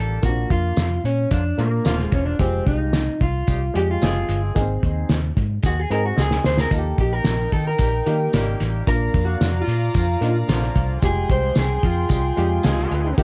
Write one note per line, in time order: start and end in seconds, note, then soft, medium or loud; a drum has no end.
0.00 0.17 A1 medium
0.00 0.21 D#3 medium
0.00 0.21 G3 medium
0.00 0.21 A#3 medium
0.00 0.21 G4 loud
0.00 0.24 A4 loud
0.22 0.44 A#1 medium
0.22 0.81 A#3 medium
0.22 0.30 C4 medium
0.22 0.81 F4 medium
0.22 0.51 F#4 medium
0.22 kick loud
0.22 closed hi-hat loud
0.22 tambourine medium
0.29 0.84 D4 medium
0.50 0.71 F2 medium
0.50 1.01 F4 loud
0.50 kick medium
0.50 closed hi-hat medium
0.76 0.98 F2 medium
0.76 snare loud
0.76 closed hi-hat medium
0.76 tambourine medium
1.04 1.25 A#2 medium
1.04 1.31 C#4 medium
1.04 closed hi-hat medium
1.31 1.52 F2 medium
1.31 1.43 D3 medium
1.31 1.43 F3 medium
1.31 1.43 A#3 medium
1.31 1.59 D4 medium
1.31 1.43 F4 medium
1.31 kick medium
1.31 closed hi-hat medium
1.31 tambourine medium
1.58 1.79 A#2 medium
1.58 1.70 D3 medium
1.58 1.70 F3 medium
1.58 2.02 A#3 medium
1.58 1.70 A#3 medium
1.58 2.03 A#3 medium
1.58 2.02 D4 medium
1.58 1.70 F4 medium
1.58 2.02 F4 medium
1.58 closed hi-hat medium
1.84 2.06 D#1 medium
1.84 2.36 D3 medium
1.84 2.37 F3 medium
1.84 2.36 A#3 medium
1.84 2.37 F4 loud
1.84 snare loud
1.84 closed hi-hat medium
1.84 tambourine medium
1.99 snare soft
2.03 2.15 G#3 medium
2.12 2.33 E1 medium
2.12 2.25 C#4 medium
2.12 kick medium
2.12 closed hi-hat medium
2.26 2.39 D4 medium
2.39 2.60 F1 loud
2.39 2.97 G#3 medium
2.39 2.67 C4 medium
2.39 2.98 F4 medium
2.39 2.98 G4 medium
2.39 kick loud
2.39 closed hi-hat loud
2.39 tambourine medium
2.67 3.08 C2 medium
2.67 3.23 D#4 medium
2.67 kick medium
2.67 closed hi-hat medium
2.93 snare loud
2.93 closed hi-hat medium
2.93 tambourine loud
3.21 3.42 C2 medium
3.21 3.77 F4 medium
3.21 kick medium
3.21 closed hi-hat medium
3.47 3.68 C2 medium
3.47 3.59 C3 medium
3.47 3.59 G3 medium
3.47 3.59 G#3 medium
3.47 3.59 G4 medium
3.47 kick medium
3.47 closed hi-hat medium
3.47 tambourine medium
3.74 3.96 F2 medium
3.74 3.86 C3 medium
3.74 3.86 G3 medium
3.74 4.18 G#3 medium
3.74 3.86 G#3 medium
3.74 4.18 F4 medium
3.74 3.86 G4 medium
3.74 4.18 G4 medium
3.74 3.90 G4 loud
3.74 closed hi-hat medium
3.91 4.40 F4 medium
4.02 4.22 F#1 medium
4.02 4.53 F3 medium
4.02 4.53 G#3 medium
4.02 4.53 C4 loud
4.02 4.53 G#4 loud
4.02 snare loud
4.02 closed hi-hat medium
4.02 tambourine medium
4.29 4.49 G1 medium
4.29 closed hi-hat medium
4.55 4.77 G#1 medium
4.55 4.62 A#3 medium
4.55 5.13 D#4 medium
4.55 5.14 G#4 loud
4.55 kick loud
4.55 closed hi-hat loud
4.55 tambourine medium
4.61 5.16 C4 medium
4.83 5.03 D#2 medium
4.83 kick medium
4.83 closed hi-hat medium
5.09 5.30 D#2 medium
5.09 snare loud
5.09 closed hi-hat medium
5.09 tambourine medium
5.37 5.57 G#2 loud
5.37 kick medium
5.37 closed hi-hat medium
5.63 5.84 D#2 medium
5.63 5.75 D#3 medium
5.63 5.75 G#3 medium
5.63 5.75 C4 medium
5.63 5.79 F#4 medium
5.63 5.75 G#4 medium
5.63 kick medium
5.63 closed hi-hat medium
5.63 tambourine medium
5.79 5.91 G#4 medium
5.90 6.11 G#2 loud
5.90 6.02 D#3 medium
5.90 6.03 G#3 medium
5.90 6.34 C4 medium
5.90 6.02 C4 medium
5.90 6.34 D#4 medium
5.90 6.03 G#4 medium
5.90 6.35 G#4 medium
5.90 6.05 A#4 loud
5.90 closed hi-hat medium
6.06 6.20 F#4 medium
6.16 6.38 C#2 medium
6.16 6.68 D#3 medium
6.16 6.68 G#3 loud
6.16 6.68 C4 medium
6.16 6.68 G#4 loud
6.16 6.46 G#4 medium
6.16 snare medium
6.16 tambourine medium
6.31 snare medium
6.44 6.65 D2 medium
6.44 6.59 C5 loud
6.44 snare medium
6.58 6.73 A#4 medium
6.58 snare medium
6.70 6.92 D#2 medium
6.70 7.29 A#3 medium
6.70 8.83 D#4 medium
6.70 7.29 D#4 medium
6.70 6.78 F4 medium
6.70 7.00 A4 medium
6.70 8.83 A#4 medium
6.70 8.83 G5 medium
6.70 kick loud
6.70 closed hi-hat loud
6.70 tambourine medium
6.78 7.33 G4 medium
6.98 7.19 A#1 medium
6.98 7.13 G4 medium
6.98 kick medium
6.98 closed hi-hat medium
7.13 7.53 A#4 medium
7.24 7.46 A#1 medium
7.24 snare loud
7.24 closed hi-hat medium
7.24 tambourine medium
7.52 7.73 D#3 loud
7.52 7.67 A4 medium
7.52 kick medium
7.52 closed hi-hat medium
7.67 8.44 A#4 medium
7.78 8.00 A#1 medium
7.78 7.91 D#3 medium
7.78 7.91 G3 medium
7.78 7.91 A#3 medium
7.78 7.91 G4 medium
7.78 kick medium
7.78 closed hi-hat medium
7.78 tambourine medium
8.06 8.18 D#3 medium
8.06 8.27 D#3 medium
8.06 8.18 G3 medium
8.06 8.18 A#3 medium
8.06 8.50 A#3 medium
8.06 8.50 D#4 medium
8.06 8.18 G4 medium
8.06 8.50 G4 medium
8.06 closed hi-hat medium
8.33 8.54 G#1 medium
8.33 8.84 D#3 loud
8.33 8.84 G3 medium
8.33 8.84 A#3 medium
8.33 8.84 G4 loud
8.33 snare loud
8.33 closed hi-hat medium
8.33 tambourine medium
8.60 8.81 A1 medium
8.60 snare soft
8.60 closed hi-hat medium
8.86 9.08 A#1 loud
8.86 9.45 A#3 medium
8.86 9.45 D4 medium
8.86 9.45 F4 medium
8.86 9.25 A#4 loud
8.86 10.98 D5 medium
8.86 10.98 F5 medium
8.86 10.98 A#5 medium
8.86 kick loud
8.86 closed hi-hat loud
8.86 tambourine medium
9.14 9.35 F2 medium
9.14 kick medium
9.14 closed hi-hat medium
9.25 9.61 F#4 medium
9.41 9.61 F2 medium
9.41 snare loud
9.41 closed hi-hat medium
9.41 tambourine medium
9.62 10.37 F4 medium
9.67 9.88 A#2 medium
9.67 closed hi-hat medium
9.94 10.15 F2 medium
9.94 10.07 D3 medium
9.94 10.06 F3 medium
9.94 10.07 A#3 medium
9.94 10.06 F4 medium
9.94 kick medium
9.94 closed hi-hat medium
9.94 tambourine medium
10.21 10.42 A#2 medium
10.21 10.34 D3 medium
10.21 10.34 F3 medium
10.21 10.65 A#3 medium
10.21 10.34 A#3 medium
10.21 10.65 D4 medium
10.21 10.29 D#4 medium
10.21 10.34 F4 medium
10.21 closed hi-hat medium
10.28 10.68 F4 medium
10.48 10.69 A#1 medium
10.48 10.99 D3 medium
10.48 11.00 F3 loud
10.48 10.99 A#3 loud
10.48 11.00 F4 loud
10.48 snare loud
10.48 closed hi-hat medium
10.48 tambourine medium
10.62 snare soft
10.76 10.96 C2 medium
10.76 kick medium
10.76 closed hi-hat medium
11.02 11.23 F1 loud
11.02 11.60 G#3 medium
11.02 11.60 F4 medium
11.02 11.61 G4 medium
11.02 13.14 G#4 medium
11.02 11.31 G#4 medium
11.02 13.14 G5 medium
11.02 13.14 C6 medium
11.02 kick loud
11.02 closed hi-hat loud
11.02 tambourine medium
11.30 11.50 C2 medium
11.30 11.55 C5 loud
11.30 kick medium
11.30 closed hi-hat medium
11.55 11.77 C2 medium
11.55 11.85 G#4 medium
11.55 snare loud
11.55 closed hi-hat medium
11.55 tambourine medium
11.83 12.04 F2 loud
11.83 13.15 F4 medium
11.83 kick medium
11.83 closed hi-hat medium
12.09 12.30 C2 loud
12.09 12.22 C3 medium
12.09 12.22 G3 medium
12.09 12.22 G#3 medium
12.09 12.22 G4 medium
12.09 kick medium
12.09 closed hi-hat medium
12.09 tambourine medium
12.37 12.58 F2 loud
12.37 12.48 C3 medium
12.37 12.49 G3 medium
12.37 12.48 G#3 medium
12.37 12.80 G#3 medium
12.37 12.81 F4 medium
12.37 12.49 G4 medium
12.37 12.81 G4 medium
12.37 closed hi-hat medium
12.63 12.85 C#2 medium
12.63 13.15 F3 loud
12.63 13.15 G#3 loud
12.63 13.15 C4 loud
12.63 13.15 G#4 loud
12.63 snare loud
12.63 closed hi-hat medium
12.63 tambourine medium
12.78 snare soft
12.91 13.12 D2 medium
12.91 closed hi-hat medium
13.17 13.23 D#2 medium
13.17 13.23 A#3 medium
13.17 13.23 D#4 medium
13.17 13.23 G4 medium
13.17 13.23 G4 loud
13.17 13.23 D#5 medium
13.17 13.23 A#5 medium
13.17 kick loud
13.17 closed hi-hat loud
13.17 tambourine medium